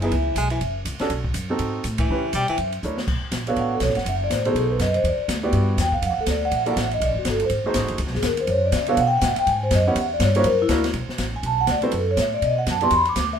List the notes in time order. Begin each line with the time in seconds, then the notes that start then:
Already playing: F#1
0.02 E3 B3 D#4 E4 G#4 E5, ride
0.11 C#2, kick, ride
0.36 B1 G#3 G#5, kick, hi-hat pedal, ride
0.50 E3 E5, ride
0.61 F#1, kick, ride
0.85 C#2, kick, hi-hat pedal, ride
0.99 C#4 D4 F#4 A4, muted upright bass stroke, snare, ride
1.10 B1, kick, ride
1.24 kick
1.34 F#2, kick, hi-hat pedal, ride
1.50 C4 D#4 F#4 A4
1.59 G#2, kick, ride
1.84 A2, kick, hi-hat pedal, ride
1.98 E3 E5, kick, ride
2.09 C#3 C#4 E4 G4 B4
2.33 B2 G3 G5, kick, hi-hat pedal, ride
2.48 E3 E5, muted upright bass stroke, ride
2.58 F#2, kick, ride
2.72 ride
2.83 D2 D4 E4 A#4 C#5, hi-hat pedal
2.97 snare
3.07 B1, kick, crash
3.22 muted upright bass stroke
3.32 A#1, kick, snare, hi-hat pedal, ride
3.47 B3 D4 F#4 A4 C#5 F5, ride
3.56 A1 F#5, kick, ride
3.75 A4
3.80 B1 C#5, kick, snare, hi-hat pedal, ride
3.88 A1, snare
3.95 F#1 F#5, snare, ride
4.05 F#1 E5, kick, ride
4.24 D5
4.30 A1 C5, kick, snare, hi-hat pedal, ride
4.45 B2 D#4 F#4 G#4 A4 C5, ride
4.55 B1 A4, kick, ride
4.72 B4
4.79 F#2 D#5, kick, snare, hi-hat pedal, ride
4.94 C5, ride
5.04 E2 D5, kick, ride
5.18 muted upright bass stroke
5.28 D2, kick, snare, hi-hat pedal, ride
5.43 B3 E4 F#4 G4 D5
5.52 G2, ride
5.77 E2 G5, kick, snare, hi-hat pedal, ride
5.92 F5, kick
6.02 F#2 F#5, kick, ride
6.10 E2
6.18 D2 A4
6.26 D2, kick, snare, hi-hat pedal, ride
6.31 D5
6.45 F#5
6.51 A#1, kick, ride
6.56 E5
6.66 A#3 E4 F#4 A4 D5, ride
6.70 F#5
6.76 A1, kick, snare, hi-hat pedal, ride
6.81 E5
6.91 D#5, ride
7.00 B1 D5, kick, ride
7.08 A1
7.16 F#1 F#4
7.25 G1, kick, snare, hi-hat pedal, ride
7.30 A4
7.40 ride
7.45 C5
7.50 G#1, kick, ride
7.64 A3 D#4 F#4 G#4 C5, muted upright bass stroke
7.74 A1, kick, snare, hi-hat pedal, ride
7.81 G#1
7.88 F#1, ride
7.98 C#2, kick, ride
8.07 B1, snare
8.15 G#1 G#4, snare
8.22 D#2 A#4, kick, snare, hi-hat pedal, ride
8.37 C5, ride
8.47 F#2 C#5, kick, ride
8.66 D5
8.72 C#3, kick, snare, hi-hat pedal, ride
8.77 E5
8.86 B3 D4 F#4 A4 C#5 F5, ride
8.97 B2 F#5, kick, ride
9.07 G5
9.17 F#5
9.21 A2 E5, kick, snare, hi-hat pedal, ride
9.36 G5, muted upright bass stroke, ride
9.47 G#2 G#5, kick, ride
9.63 C5
9.71 F#2, kick, snare, hi-hat pedal, ride
9.75 D#5
9.87 B3 C#4 E4 G4 C#5 F#5
9.95 E2, kick, ride
10.01 E5
10.13 D5
10.20 G2 C#5, kick, snare, hi-hat pedal, ride
10.35 A#3 D4 E4 F#4 C5 C#5, ride
10.44 F#2 A#4, kick, ride
10.62 E4
10.69 D2 A#3 D4 E4 F#4 A#4, kick, snare, hi-hat pedal, ride
10.84 snare, ride
10.93 B1, kick, ride
11.08 muted upright bass stroke, snare
11.18 A1, kick, snare, hi-hat pedal, ride
11.36 G#5
11.43 B1 A5, kick, ride
11.60 F#5
11.67 D2, kick, snare, hi-hat pedal, ride
11.71 D5
11.82 C4 E4 F#4 A4 B4 C5, ride
11.91 F#2, kick, ride
11.96 A4
12.11 C#5
12.17 A2, kick, snare, hi-hat pedal, ride
12.22 E5
12.34 D5
12.42 B2 D#5, kick, ride
12.58 F#5
12.66 F#2, kick, snare, hi-hat pedal, ride
12.71 A5
12.81 B3 E4 F#4 G4 D5 C6, ride
12.91 E2 B5, kick, ride
13.05 D6, ride
13.16 D2, kick, snare, hi-hat pedal, ride
13.33 E5